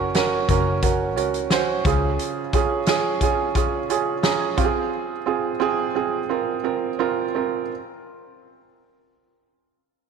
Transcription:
Already playing: F#1 C#4 F#4 A#4
0.15 C#4 F#4 A#4, snare, closed hi-hat
0.49 F#1 C#4 F#4 A#4, kick, closed hi-hat
0.82 C#4 F#4 A#4, kick, closed hi-hat
1.16 C#2 C#4 F#4 A#4, closed hi-hat
1.34 closed hi-hat
1.50 C#4 F#4 C5, snare, closed hi-hat
1.85 C#2 C#3 C#4 F4 G#4, kick, closed hi-hat
2.19 closed hi-hat
2.53 C#4 F4 G#4, kick, closed hi-hat
2.86 C#4 F4 G#4, snare, closed hi-hat
3.21 C#4 F4 G#4, kick, closed hi-hat
3.55 C#4 F4 G#4, kick, closed hi-hat
3.90 C#4 F4 G#4 G#5, closed hi-hat
4.23 C#4 F4 G#4 A#5, snare, closed hi-hat
4.40 G#5
4.57 C4 F4 G4 F5, kick, closed hi-hat
4.65 G#4
5.26 C4 F4 G#4
5.60 C4 F4 G#4
5.95 C4 F4 G#4
6.29 C4 F4 A#4
6.64 C4 F4 A#4
6.99 C4 F4 A#4
7.35 C4 F4 A#4

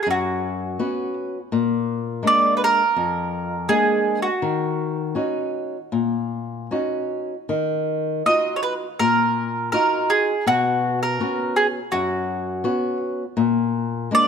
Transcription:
0.03 F#2 G#4
0.11 F#4
0.79 B3 C#4 F#4
1.52 A#2
2.23 G#3 A#3 D4
2.27 D5
2.57 B4
2.64 A#4
2.96 F2
3.69 G#3 A#3 D4 G#4
4.22 F#4
4.42 D#3
5.15 C#4 D#4 F#4
5.92 A#2
6.71 C#4 D#4 F#4
7.49 D#3
8.26 D#4 F4 F#4 D#5
8.56 C#5
8.63 B4
8.99 A#2 A#4
9.72 D#4 F4 F#4 A#4
10.10 G#4
10.47 B2 F#4
11.03 A#4
11.20 B3 C#4 F#4
11.56 G#4
11.92 F#2 F#4
12.64 B3 C#4 F#4
13.37 A#2
14.11 G#3 A#3 D4 D5

